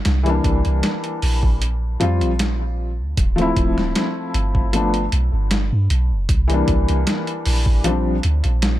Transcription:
0.05 0.40 C2 loud
0.05 snare loud
0.05 closed hi-hat medium
0.23 1.58 E3 medium
0.23 1.59 G3 medium
0.23 closed hi-hat soft
0.27 1.60 A#3 medium
0.27 1.61 D4 loud
0.44 0.63 C2 loud
0.44 kick medium
0.44 closed hi-hat medium
0.65 0.82 C2 medium
0.65 closed hi-hat soft
0.83 snare loud
0.83 closed hi-hat medium
1.04 closed hi-hat soft
1.22 1.97 A#1 medium
1.22 open hi-hat medium
1.43 kick medium
1.62 closed hi-hat medium
2.00 2.23 F2 medium
2.00 2.29 F3 loud
2.00 2.30 G3 medium
2.00 2.31 C4 medium
2.00 2.31 F4 loud
2.00 closed hi-hat medium
2.21 3.01 A#1 medium
2.21 closed hi-hat soft
2.39 snare loud
2.39 closed hi-hat medium
2.99 3.15 D2 medium
3.17 3.52 D1 loud
3.17 kick loud
3.17 closed hi-hat loud
3.36 4.70 F3 loud
3.36 4.71 A3 medium
3.36 4.72 C4 medium
3.36 closed hi-hat soft
3.42 4.73 E4 loud
3.56 3.74 D1 loud
3.56 kick medium
3.56 closed hi-hat medium
3.77 3.93 D1 medium
3.77 snare soft
3.95 snare loud
3.95 closed hi-hat medium
4.34 5.09 G1 medium
4.34 closed hi-hat medium
4.55 kick medium
4.73 5.02 F3 medium
4.73 5.03 A3 medium
4.73 5.03 B3 medium
4.73 5.04 D4 medium
4.73 closed hi-hat medium
4.94 closed hi-hat soft
5.12 5.30 B1 medium
5.12 closed hi-hat medium
5.33 5.72 G1 medium
5.51 snare loud
5.51 closed hi-hat medium
5.73 5.88 G2 medium
5.90 6.13 B1 loud
5.90 closed hi-hat medium
6.11 6.27 F1 loud
6.29 6.64 C2 medium
6.29 kick loud
6.29 closed hi-hat medium
6.48 7.82 E3 loud
6.48 7.83 G3 medium
6.48 7.84 A#3 medium
6.48 closed hi-hat soft
6.53 7.85 D4 loud
6.68 6.86 C2 loud
6.68 kick loud
6.68 closed hi-hat medium
6.88 7.05 C2 medium
6.88 closed hi-hat soft
7.07 snare loud
7.07 closed hi-hat medium
7.27 closed hi-hat soft
7.46 8.20 A#1 medium
7.46 open hi-hat medium
7.66 kick medium
7.84 8.14 F3 medium
7.84 8.14 G3 medium
7.84 8.15 C4 medium
7.84 8.15 D4 loud
7.84 closed hi-hat medium
8.23 8.42 D2 medium
8.23 closed hi-hat medium
8.44 8.79 A#1 medium
8.44 closed hi-hat soft
8.62 snare loud
8.62 closed hi-hat medium

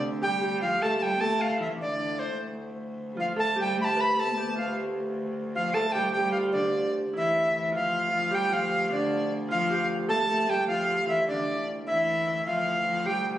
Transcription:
0.00 2.39 D2 medium
0.00 2.64 C4 medium
0.00 1.75 D4 medium
0.00 0.60 F4 medium
0.00 0.21 G4 medium
0.00 0.82 A4 medium
0.22 0.64 G3 medium
0.22 0.41 G4 medium
0.22 0.59 G5 loud
0.41 2.77 G4 medium
0.61 0.81 F3 medium
0.61 1.39 F4 medium
0.61 0.84 F5 medium
0.81 1.00 A3 medium
0.81 1.21 A4 medium
0.81 0.96 A5 medium
0.97 1.12 G3 medium
0.97 1.04 A5 medium
1.02 1.22 G5 medium
1.16 1.22 B3 medium
1.20 1.61 A3 medium
1.20 3.36 A4 medium
1.20 1.43 A5 medium
1.40 1.64 F4 medium
1.40 1.60 F5 medium
1.58 1.73 E3 medium
1.58 3.23 E4 medium
1.58 1.67 E5 medium
1.74 1.84 E3 soft
1.74 4.56 D4 medium
1.81 2.40 D3 medium
1.81 2.21 D5 medium
2.19 2.39 C5 medium
2.39 7.14 D2 medium
3.12 3.35 F3 medium
3.12 3.18 G3 soft
3.17 4.55 F4 medium
3.17 3.26 F5 medium
3.36 3.55 A3 medium
3.36 4.16 A4 medium
3.36 3.57 A5 medium
3.56 3.77 G3 medium
3.56 4.37 G4 medium
3.61 3.78 G5 medium
3.76 4.15 A3 medium
3.81 4.02 A5 medium
3.81 3.85 B5 medium
3.96 6.01 B4 medium
4.01 4.21 B5 loud
4.16 4.26 A3 medium
4.16 5.74 A4 medium
4.16 4.57 A5 medium
4.24 4.34 B3 medium
4.33 4.41 A3 medium
4.37 4.50 B3 medium
4.37 5.94 G4 medium
4.48 4.76 A3 medium
4.55 5.55 F4 medium
4.55 4.75 F5 medium
5.55 5.75 F3 medium
5.55 6.36 F4 medium
5.55 5.75 F5 medium
5.74 5.94 A3 medium
5.74 5.89 A4 medium
5.74 5.93 A5 medium
5.90 8.09 A4 medium
5.90 6.11 G5 medium
5.94 6.04 G3 medium
5.94 6.16 G4 medium
6.12 6.56 G3 medium
6.12 6.31 G5 medium
6.16 8.30 G4 medium
6.31 6.37 F5 medium
6.36 7.19 F4 medium
6.52 6.99 D3 medium
6.52 8.90 D4 medium
6.52 6.94 D5 medium
7.13 11.89 D2 medium
7.13 7.50 E3 medium
7.13 7.78 E4 medium
7.13 7.70 E5 medium
7.54 7.75 E3 medium
7.72 8.12 F3 medium
7.72 8.10 F4 medium
7.72 8.36 F5 medium
8.11 8.33 F3 medium
8.11 8.48 F4 medium
8.31 8.52 G3 medium
8.31 9.70 G4 medium
8.35 8.54 G5 medium
8.49 8.90 F3 medium
8.49 9.48 F4 medium
8.53 8.91 F5 medium
8.90 9.32 D3 medium
8.90 11.30 D4 medium
8.90 9.33 D5 medium
9.48 9.87 F3 medium
9.48 10.69 F4 medium
9.48 9.87 F5 medium
9.70 10.49 G4 medium
10.08 10.18 A3 medium
10.08 10.28 A4 medium
10.08 10.51 A5 loud
10.28 10.49 A3 medium
10.28 12.48 A4 medium
10.47 10.67 G3 medium
10.47 12.85 G4 medium
10.47 10.67 G5 medium
10.67 11.05 F3 medium
10.67 10.88 F4 medium
10.67 11.05 F5 medium
10.88 11.16 F4 medium
11.06 11.26 E3 medium
11.06 11.88 E4 medium
11.06 11.27 E5 medium
11.27 11.69 D3 medium
11.27 13.38 D4 medium
11.27 11.69 D5 medium
11.87 13.38 D2 medium
11.87 12.44 E3 medium
11.87 12.26 E4 medium
11.87 12.42 E5 medium
12.27 12.54 E4 medium
12.46 12.83 F3 medium
12.46 13.38 F4 medium
12.46 13.08 F5 medium
12.86 13.07 F3 medium
13.06 13.26 G3 medium
13.06 13.38 G4 medium
13.06 13.26 G5 medium

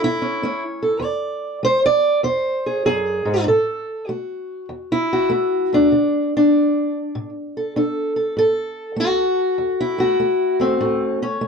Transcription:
0.00 0.37 E2 medium
0.00 0.19 C#4 soft
0.00 0.04 E4 medium
0.00 0.63 E4 loud
0.22 0.41 C#4 medium
0.43 0.98 A3 medium
0.43 1.01 C#4 medium
0.83 1.03 A4 medium
1.00 1.57 E2 medium
1.00 1.63 D5 loud
1.63 2.19 G#3 medium
1.63 1.84 C5 loud
1.86 2.24 D5 loud
2.23 2.80 E2 medium
2.23 2.85 C5 loud
2.66 2.85 G#4 medium
2.85 3.25 F#2 medium
2.85 3.46 G#4 loud
3.25 3.46 G#2 medium
3.47 4.03 A2 medium
3.47 4.08 A4 medium
4.08 4.65 A3 medium
4.08 5.10 F#4 medium
4.69 5.26 E2 medium
4.92 5.30 E4 medium
5.13 5.93 F#4 medium
5.30 5.69 A3 medium
5.30 5.71 E4 medium
5.73 5.91 A3 soft
5.73 6.33 D4 medium
5.92 6.48 D3 medium
6.37 7.29 D4 medium
7.15 7.71 A2 medium
7.57 7.77 A4 soft
7.76 8.32 D4 medium
7.76 8.16 A4 medium
8.16 8.38 A4 soft
8.37 8.93 A2 medium
8.37 9.59 A4 medium
8.96 9.53 A3 medium
8.96 9.99 F#4 medium
9.58 10.14 E2 medium
9.80 10.60 E4 medium
9.98 10.18 A3 soft
9.98 11.21 F#4 medium
10.20 10.58 A3 medium
10.60 10.78 A3 soft
10.60 11.21 C4 medium
10.80 11.37 A2 medium
10.80 11.40 A3 medium
11.22 11.48 C#4 medium
11.41 11.48 A3 medium

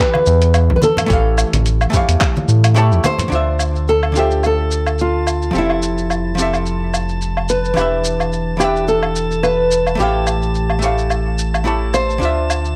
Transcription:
0.00 1.05 E3 medium
0.00 1.06 E4 medium
0.00 1.07 G4 medium
0.00 0.72 B4 loud
0.00 1.08 B4 medium
0.00 1.09 D5 loud
0.14 high conga medium
0.14 low woodblock medium
0.26 0.71 E2 loud
0.26 shaker medium
0.42 closed hi-hat medium
0.42 shaker soft
0.54 closed hi-hat soft
0.54 low woodblock medium
0.54 shaker soft
0.70 0.78 B1 medium
0.70 low conga medium
0.76 0.82 B4 medium
0.82 3.01 A4 medium
0.82 high conga medium
0.82 shaker medium
0.97 closed hi-hat medium
0.97 low conga medium
0.97 low woodblock medium
0.97 shaker soft
1.06 1.45 A1 loud
1.06 1.89 E3 medium
1.06 1.89 A3 loud
1.06 1.90 G4 medium
1.06 kick loud
1.06 closed hi-hat soft
1.10 1.91 C#5 medium
1.10 1.92 F5 loud
1.10 shaker soft
1.38 low woodblock medium
1.38 shaker medium
1.53 1.86 A1 medium
1.53 closed hi-hat medium
1.53 high conga medium
1.53 shaker soft
1.66 closed hi-hat soft
1.66 shaker soft
1.81 low woodblock medium
1.81 shaker soft
1.90 2.73 E3 medium
1.90 2.73 A3 medium
1.90 2.74 G4 medium
1.90 kick medium
1.90 low conga medium
1.90 shaker medium
1.95 2.75 C#5 medium
1.95 2.76 F5 loud
2.08 2.17 E2 loud
2.08 closed hi-hat medium
2.08 shaker soft
2.21 kick loud
2.21 clap medium
2.21 closed hi-hat soft
2.21 low woodblock medium
2.21 shaker soft
2.36 high conga medium
2.36 shaker soft
2.48 2.93 A2 loud
2.48 shaker medium
2.64 closed hi-hat medium
2.64 low woodblock medium
2.64 shaker soft
2.74 3.28 A3 medium
2.74 3.29 E4 medium
2.74 3.29 G4 medium
2.74 3.30 C#5 medium
2.74 3.30 A5 loud
2.74 closed hi-hat soft
2.74 shaker soft
2.91 3.00 E2 medium
2.91 shaker soft
3.04 3.89 C5 loud
3.04 high conga medium
3.04 low woodblock medium
3.04 shaker medium
3.19 closed hi-hat medium
3.19 low conga loud
3.19 shaker soft
3.28 5.52 D2 medium
3.28 4.11 D3 medium
3.28 4.11 D4 medium
3.28 4.12 F4 medium
3.28 12.76 A5 medium
3.28 shaker soft
3.33 4.13 C5 medium
3.33 4.14 E5 medium
3.59 low woodblock medium
3.59 shaker medium
3.76 shaker soft
3.88 4.14 A4 medium
3.88 shaker soft
4.03 low woodblock medium
4.12 5.50 D3 medium
4.12 5.51 D4 medium
4.12 5.52 F4 medium
4.12 shaker medium
4.17 4.42 G4 medium
4.17 5.52 C5 medium
4.17 5.53 E5 medium
4.31 shaker soft
4.43 5.02 A4 medium
4.43 low woodblock medium
4.43 shaker soft
4.71 shaker medium
4.87 low woodblock medium
4.87 shaker soft
4.99 5.57 F4 medium
4.99 shaker soft
5.27 low woodblock medium
5.27 shaker medium
5.42 shaker soft
5.51 7.74 F1 medium
5.51 6.33 F3 medium
5.51 6.34 C4 medium
5.51 6.35 G4 medium
5.51 shaker soft
5.56 7.19 E4 medium
5.56 6.36 A4 medium
5.56 6.37 E5 medium
5.70 low woodblock medium
5.82 shaker medium
5.98 shaker soft
6.10 low woodblock medium
6.10 shaker soft
6.35 7.72 F3 medium
6.35 7.73 C4 medium
6.35 7.74 G4 medium
6.35 shaker medium
6.40 7.75 A4 medium
6.40 7.76 E5 medium
6.54 low woodblock medium
6.54 shaker soft
6.66 shaker soft
6.94 low woodblock medium
6.94 shaker medium
7.09 shaker soft
7.22 shaker soft
7.37 low woodblock medium
7.49 8.59 B4 medium
7.49 shaker medium
7.65 shaker soft
7.74 9.97 E1 medium
7.74 8.56 E3 medium
7.74 8.57 D4 medium
7.74 8.57 G4 medium
7.74 low woodblock medium
7.74 shaker soft
7.79 8.58 B4 medium
7.79 8.59 E5 medium
8.04 shaker medium
8.20 low woodblock medium
8.20 shaker soft
8.33 shaker soft
8.57 9.94 E3 medium
8.57 9.95 D4 medium
8.57 8.88 G4 medium
8.57 9.96 G4 medium
8.57 low woodblock medium
8.57 shaker medium
8.62 9.97 B4 medium
8.62 9.98 E5 medium
8.76 shaker soft
8.88 9.40 A4 medium
8.88 shaker soft
9.03 low woodblock medium
9.16 shaker medium
9.31 shaker soft
9.43 9.95 B4 medium
9.43 low woodblock medium
9.43 shaker soft
9.71 shaker medium
9.87 low woodblock medium
9.87 shaker soft
9.95 12.19 A1 medium
9.95 10.78 E3 medium
9.95 10.78 A3 medium
9.95 10.79 G4 medium
9.99 11.62 G4 medium
9.99 10.80 C#5 medium
9.99 10.81 F5 medium
9.99 shaker soft
10.27 low woodblock medium
10.27 shaker medium
10.42 shaker soft
10.55 shaker soft
10.70 low woodblock medium
10.79 11.62 E3 medium
10.79 11.61 A3 medium
10.79 11.63 G4 medium
10.79 shaker medium
10.84 11.64 C#5 medium
10.84 11.65 F5 medium
10.98 shaker soft
11.10 low woodblock medium
11.10 shaker soft
11.38 shaker medium
11.54 low woodblock medium
11.54 shaker soft
11.64 12.17 A3 medium
11.64 12.18 E4 medium
11.64 12.18 G4 medium
11.64 12.19 C#5 medium
11.64 12.19 A5 medium
11.64 shaker soft
11.94 12.76 C5 medium
11.94 low woodblock medium
11.94 shaker medium
12.10 shaker soft
12.18 12.76 D2 medium
12.18 12.76 D3 medium
12.18 12.76 D4 medium
12.18 12.76 F4 medium
12.18 shaker soft
12.23 12.76 C5 medium
12.23 12.76 E5 medium
12.50 low woodblock medium
12.50 shaker medium
12.65 shaker soft

